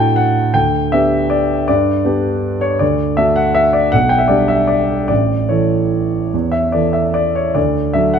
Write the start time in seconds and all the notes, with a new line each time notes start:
Already playing: A2 A3 D4 F#4 F#5 G5 A5
0.16 F#5
0.54 D2 G5
0.92 B3 D4 G4 E5
1.30 D5
1.68 G2 D5
2.05 B3 D4 G4
2.61 C#5
2.79 D2 D5
3.17 A3 D4 F#4 E5
3.36 F#5
3.55 E5
3.73 D5
3.92 B1 F#5
4.09 G5
4.18 E5
4.28 G3 D4 G4 D5
4.48 E5
4.67 D5
5.08 A1 D5
5.49 E3 E4 A4 C#5
6.34 E2
6.52 E5
6.72 E3 E4 A4 D5
6.93 E5
7.14 D5
7.35 C#5
7.55 D2 D5
7.93 F#3 D4 A4 E5
8.14 F#5